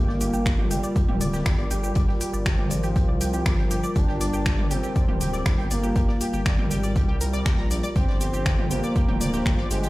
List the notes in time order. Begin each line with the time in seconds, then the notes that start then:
Already playing: G1 G3 A#3 F4 A#4
0.08 D5, snare
0.20 G4, closed hi-hat, open hi-hat, shaker
0.34 G1 G4, shaker
0.45 D5, finger snap, kick, snare, closed hi-hat, shaker
0.59 G4, mid tom
0.70 G1 G3 G4, closed hi-hat, open hi-hat, shaker
0.83 D5, shaker
0.96 G4, kick, closed hi-hat, shaker
1.08 D1 G4, mid tom
1.21 D5, closed hi-hat, open hi-hat, shaker
1.33 G4, snare, shaker
1.46 G1 G4, finger snap, kick, snare, closed hi-hat, shaker
1.58 D5, closed hi-hat
1.70 G1 G3 G4, closed hi-hat, open hi-hat, shaker
1.83 G4, shaker
1.95 G1 D5, kick, closed hi-hat, shaker
2.08 G4, snare
2.21 G4, closed hi-hat, open hi-hat, shaker
2.33 G1 D5, shaker
2.46 F3 G4, finger snap, kick, snare, closed hi-hat, shaker
2.58 G4, mid tom
2.70 G#1 D5, closed hi-hat, open hi-hat, shaker
2.83 G4, closed hi-hat, shaker
2.96 G4, kick, closed hi-hat, shaker
3.08 C2 D5
3.21 G4, closed hi-hat, open hi-hat, shaker
3.34 G4, shaker
3.45 G1 D5, finger snap, kick, snare, closed hi-hat, shaker
3.58 G4, snare
3.70 G1 G4, closed hi-hat, open hi-hat, shaker
3.83 D5, shaker
3.96 G1 D4 G4, kick, closed hi-hat, shaker
4.08 G4, snare
4.21 D5, closed hi-hat, open hi-hat, shaker
4.33 G1 G4, shaker
4.45 G4, finger snap, kick, snare, closed hi-hat, shaker
4.58 D5, mid tom
4.71 G1 C4 G4, closed hi-hat, open hi-hat, shaker
4.83 G4, shaker
4.96 D5, kick, closed hi-hat, shaker
5.08 D1 G4, mid tom
5.21 G4, closed hi-hat, open hi-hat, shaker
5.33 D5, snare, shaker
5.46 G1 G4, finger snap, kick, snare, closed hi-hat, shaker
5.58 G4, closed hi-hat
5.71 G1 A#3 D5, closed hi-hat, open hi-hat, shaker
5.83 G4, shaker
5.96 G1 G4, kick, closed hi-hat, shaker
6.08 D5, snare
6.21 G4, closed hi-hat, open hi-hat, shaker
6.33 G1 G4, shaker
6.46 G3 D5, finger snap, kick, snare, closed hi-hat, shaker
6.58 G4, mid tom
6.71 G#1 G4, closed hi-hat, open hi-hat, shaker
6.83 D5, closed hi-hat, shaker
6.96 G4, kick, closed hi-hat, shaker
7.08 C2 G4
7.21 A#4, closed hi-hat, open hi-hat, shaker
7.33 D5, shaker
7.46 A#1 G4, finger snap, kick, snare, closed hi-hat, shaker
7.58 A#5, snare
7.71 A#1 D5, closed hi-hat, open hi-hat, shaker
7.83 D5, shaker
7.96 G1 F3 C4 F4 G4 C5, kick, closed hi-hat, shaker
8.08 D5, snare
8.21 G4, closed hi-hat, open hi-hat, shaker
8.33 G1 G4, shaker
8.46 D5, finger snap, kick, snare, closed hi-hat, shaker
8.58 G4, mid tom
8.71 G1 A#3 G4, closed hi-hat, open hi-hat, shaker
8.83 D5, shaker
8.96 G4, kick, closed hi-hat, shaker
9.08 D1 G4, mid tom
9.21 D5, closed hi-hat, open hi-hat, shaker
9.34 G4, snare, shaker
9.45 G1 G4, finger snap, kick, snare, closed hi-hat, shaker
9.59 D5, closed hi-hat
9.71 G1 G#3 G4, closed hi-hat, open hi-hat, shaker
9.83 G4, shaker